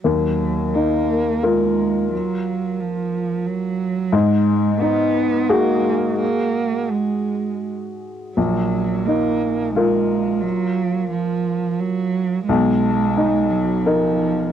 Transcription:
X:1
M:3/4
L:1/8
Q:1/4=88
K:Ebm
V:1 name="Upright piano"
E,,2 E2 [FB]2- | [FB]6 | A,,2 E2 [GA]2- | [GA]6 |
B,,,2 E2 [FB]2- | [FB]6 | =B,,,2 ^D2 [D^A]2 |]
V:2 name="Cello" clef=bass
G,2 B,2 A,2 | G,2 F,2 G,2 | A,2 C2 B,2 | B,2 A,2 z2 |
G,2 B,2 A,2 | G,2 F,2 G,2 | A,3 ^F, =F,2 |]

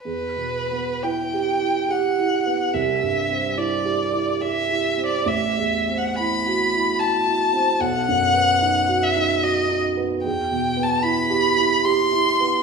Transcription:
X:1
M:3/4
L:1/16
Q:1/4=72
K:Em
V:1 name="Violin"
B4 g4 f4 | e4 d4 e3 d | e3 f b4 a4 | f6 e2 ^d2 z2 |
g3 a b4 c'4 |]
V:2 name="Grand piano"
(3E,,2 B,,2 B,2 (3E2 G2 E2 (3G2 E2 B,2 | (3C,,2 G,,2 C2 (3E2 G2 E2 (3G2 E2 C2 | (3A,,,2 E,,2 C2 (3E2 F2 E2 (3F2 E2 C2 | (3B,,,2 F,,2 B,2 (3^D2 F2 D2 (3F2 D2 B,2 |
(3E,,2 B,,2 B,2 (3E2 G2 E2 (3G2 E2 B,2 |]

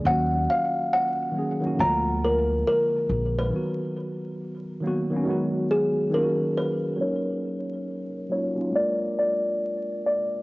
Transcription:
X:1
M:4/4
L:1/16
Q:"Swing 16ths" 1/4=69
K:Ebm
V:1 name="Kalimba"
g2 f2 g4 b2 B2 B3 c- | c8- c2 A2 B2 c2 | d6 d2 =d2 d4 d2 |]
V:2 name="Tine electric piano"
[E,G,B,DG]4- [E,G,B,DG] z [E,G,B,DA] [E,G,B,DG] [=D,F,A,B,F]6 z2 | [^D,^F,=B,^F]4- [D,F,B,F] z [D,F,^A,B,F] [D,F,A,B,_D] [E,G,_A,CG]3 z [E,G,_B,D=FG]3 z | [G,B,DEB]4- [G,B,DEB] z [G,B,DEF] [G,B,DEF] [A,B,=DFB]6 z2 |]
V:3 name="Upright bass" clef=bass
E,,2 z6 =D,,4 z2 B,,,2 | z16 | z16 |]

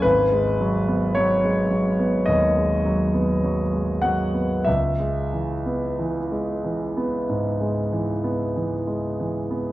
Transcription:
X:1
M:4/4
L:1/16
Q:1/4=48
K:C#m
V:1 name="Grand piano"
B4 c4 d6 f2 | e12 z4 |]
V:2 name="Grand piano" clef=bass
G,,, G, F, B, F, G, F, B, D,, G, F, B, F, G, F, B, | C,, G, E, B, E, G, E, B, G,, G, E, B, E, G, E, B, |]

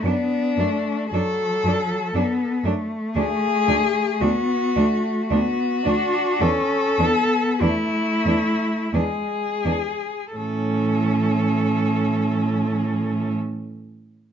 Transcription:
X:1
M:3/4
L:1/8
Q:1/4=52
K:A
V:1 name="Cello"
D2 A3 z | G2 F2 F2 | A2 E2 G2 | A6 |]
V:2 name="Cello"
D D D D D D | D D D D D D | D D D D D D | C6 |]
V:3 name="Cello"
B, A, F,2 B, A,- | A,2 B, A, B, D | C B, A,2 G, z | E,6 |]
V:4 name="Cello" clef=bass
F,, F,, F,, F,, F,, F,, | D,, D,, D,, D,, D,, D,, | E,, E,, E,, E,, E,, E,, | A,,6 |]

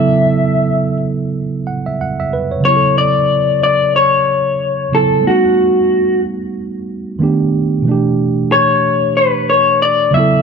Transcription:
X:1
M:4/4
L:1/16
Q:"Swing 16ths" 1/4=92
K:F#phr
V:1 name="Clean electric guitar"
e6 z8 z2 | c2 d4 d2 c6 A2 | F6 z8 z2 | z4 c4 B2 c2 d2 e2 |]
V:2 name="Tine electric piano"
z8 z2 f e f e B c- | c z12 z3 | z16 | z16 |]
V:3 name="Tine electric piano"
[C,F,B,EA]12- [C,F,B,EA]2 z2 | [C,F,B,EGA]12- [C,F,B,EGA]2 [C,F,B,EA]2 | [G,A,B,^DF]12 [^D,A,B,=DG]4 | [B,,E,A,DG]12- [B,,E,A,DG]2 [C,F,B,EA]2 |]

